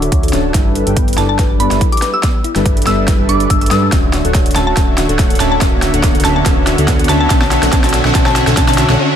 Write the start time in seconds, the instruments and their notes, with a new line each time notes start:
Already playing: analog synth bass D1, synth pluck D6, riser
0.02 synth arpeggio sound A4, closed hi-hat
0.12 analog synth bass D2, supersaw synth D3 D4 F#4 C#5 E5, synth arpeggio sound C#5, kick, closed hi-hat
0.23 synth arpeggio sound A4, closed hi-hat
0.28 closed hi-hat
0.33 analog synth bass D1, supersaw synth D3 D4 F#4 C#5 A5, synth arpeggio sound C#4, snare, closed hi-hat
0.54 analog synth bass G1, supersaw synth G3 D4 A4 B4 E5, synth arpeggio sound E4, kick, snare, closed hi-hat
0.66 synth arpeggio sound G4
0.75 synth arpeggio sound B4, closed hi-hat
0.87 analog synth bass G1, supersaw synth G3 D4 A4 B4 G5, synth arpeggio sound G4, closed hi-hat
0.97 synth arpeggio sound B3, kick, closed hi-hat
1.08 closed hi-hat
1.13 closed hi-hat
1.18 analog synth bass G1, supersaw synth G3 D4 A4 B4 D5, synth arpeggio sound E4, synth pluck A5, snare, closed hi-hat
1.29 synth arpeggio sound G4, synth pluck A5
1.39 synth arpeggio sound B4, kick, snare, closed hi-hat
1.50 synth arpeggio sound G4
1.60 analog synth bass G1, supersaw synth G3 D4 A4 B4 D5, synth arpeggio sound B3, synth pluck B5, closed hi-hat
1.71 analog synth bass G1, supersaw synth G3 D4 A4 B4 E5, snare, closed hi-hat
1.81 synth arpeggio sound E4, kick, closed hi-hat
1.92 synth arpeggio sound G4, synth pluck D6, closed hi-hat
1.97 closed hi-hat
2.02 synth arpeggio sound B4, snare, closed hi-hat
2.14 synth arpeggio sound G4, synth pluck E6
2.23 synth arpeggio sound B3, kick, snare, closed hi-hat
2.44 synth arpeggio sound E4, closed hi-hat
2.56 analog synth bass G1, supersaw synth G3 D4 A4 B4 E5, synth arpeggio sound G4, snare, closed hi-hat
2.66 synth arpeggio sound B4, kick, closed hi-hat
2.77 synth arpeggio sound G4, closed hi-hat
2.82 closed hi-hat
2.87 analog synth bass G1, supersaw synth G3 D4 A4 B4 E5, synth arpeggio sound B3, synth pluck E6, snare, closed hi-hat
3.08 synth arpeggio sound E4, kick, snare, closed hi-hat
3.19 analog synth bass G1, supersaw synth G3 D4 A4 B4 E5, synth arpeggio sound G4
3.29 analog synth bass G1, supersaw synth G3 D4 A4 B4 D5, synth arpeggio sound D4, synth pluck D6, closed hi-hat
3.40 synth arpeggio sound D5, closed hi-hat
3.50 analog synth bass G1, supersaw synth G3 D4 A4 B4 E5, synth arpeggio sound D4, synth pluck E6, kick, closed hi-hat
3.61 synth pluck E6, closed hi-hat
3.66 closed hi-hat
3.71 analog synth bass G2, supersaw synth G3 D4 A4 B4 A5, synth arpeggio sound G4, synth pluck E6, snare, closed hi-hat
3.83 synth arpeggio sound G4
3.92 analog synth bass D1, supersaw synth D3 D4 F#4 C#5 E5, synth arpeggio sound C#4, kick, snare, closed hi-hat
4.13 synth arpeggio sound F#4, snare, closed hi-hat
4.25 analog synth bass D1, supersaw synth D3 D4 F#4 C#5 F#5, synth arpeggio sound A4, closed hi-hat
4.35 synth arpeggio sound C#5, kick, snare, closed hi-hat
4.46 synth arpeggio sound A4, closed hi-hat
4.51 closed hi-hat
4.56 analog synth bass D1, supersaw synth D3 D4 F#4 C#5 E5, synth arpeggio sound C#4, synth pluck A5, snare, closed hi-hat
4.67 synth pluck A5
4.77 analog synth bass D1, supersaw synth D3 D4 F#4 C#5 E5, synth arpeggio sound C#4, kick, snare, closed hi-hat
4.98 synth arpeggio sound F#4, snare, closed hi-hat
5.09 analog synth bass D1, supersaw synth D3 D4 F#4 C#5 F#5, synth arpeggio sound A4, closed hi-hat
5.19 synth arpeggio sound C#5, kick, snare, closed hi-hat
5.30 synth arpeggio sound A4, closed hi-hat
5.35 closed hi-hat
5.40 analog synth bass D1, supersaw synth D3 D4 F#4 C#5 E5, synth arpeggio sound C#4, synth pluck A5, snare, closed hi-hat
5.52 synth pluck A5
5.61 analog synth bass D1, supersaw synth D3 D4 F#4 C#5 E5, synth arpeggio sound C#4, kick, snare, closed hi-hat
5.82 synth arpeggio sound F#4, snare, closed hi-hat
5.94 analog synth bass D1, supersaw synth D3 D4 F#4 C#5 F#5, synth arpeggio sound A4, closed hi-hat
6.04 synth arpeggio sound C#5, kick, snare, closed hi-hat
6.15 synth arpeggio sound A4, closed hi-hat
6.20 closed hi-hat
6.25 analog synth bass D1, supersaw synth D3 D4 F#4 C#5 E5, synth arpeggio sound C#4, synth pluck A5, snare, closed hi-hat
6.36 synth pluck A5
6.46 analog synth bass D1, supersaw synth D3 D4 F#4 C#5 E5, synth arpeggio sound C#4, kick, snare, closed hi-hat
6.67 synth arpeggio sound F#4, snare, closed hi-hat
6.78 analog synth bass D2, supersaw synth D3 D4 F#4 C#5 F#5, synth arpeggio sound A4, closed hi-hat
6.88 synth arpeggio sound C#5, kick, snare, closed hi-hat
6.99 synth arpeggio sound A4, closed hi-hat
7.04 closed hi-hat
7.09 analog synth bass D2, supersaw synth D3 D4 F#4 C#5 E5, synth arpeggio sound C#4, synth pluck A5, snare, closed hi-hat
7.21 synth pluck A5
7.30 analog synth bass B1, supersaw synth D3 D4 F#4 C#5 E5, synth arpeggio sound C#4, synth pluck A5, kick, snare, closed hi-hat
7.42 synth pluck A5, snare
7.51 synth arpeggio sound F#4, snare, closed hi-hat
7.63 analog synth bass B1, supersaw synth D3 D4 F#4 C#5 F#5, synth arpeggio sound A4, snare, closed hi-hat
7.73 analog synth bass B1, supersaw synth D3 D4 F#4 C#5 E5, synth arpeggio sound C#4, synth pluck A5, kick, snare, closed hi-hat
7.84 synth pluck A5, snare, closed hi-hat
7.89 closed hi-hat
7.94 synth arpeggio sound F#4, snare, closed hi-hat
8.05 analog synth bass B1, supersaw synth D3 D4 F#4 C#5 F#5, synth arpeggio sound A4, snare
8.15 analog synth bass B1, supersaw synth D3 D4 F#4 C#5 E5, synth arpeggio sound C#4, synth pluck A5, kick, snare, closed hi-hat
8.26 synth pluck A5, snare
8.36 synth arpeggio sound F#4, snare, closed hi-hat
8.47 analog synth bass B1, supersaw synth D3 D4 F#4 C#5 F#5, synth arpeggio sound A4, snare, closed hi-hat
8.57 analog synth bass B1, supersaw synth D3 D4 F#4 C#5 E5, synth arpeggio sound C#4, synth pluck A5, kick, snare, closed hi-hat
8.69 synth pluck A5, snare, closed hi-hat
8.73 closed hi-hat
8.78 synth arpeggio sound F#4, snare, closed hi-hat
8.90 analog synth bass B1, supersaw synth D3 D4 F#4 C#5 F#5, synth arpeggio sound A4, snare
8.99 supersaw synth D3 D4 F#4 C#5 E5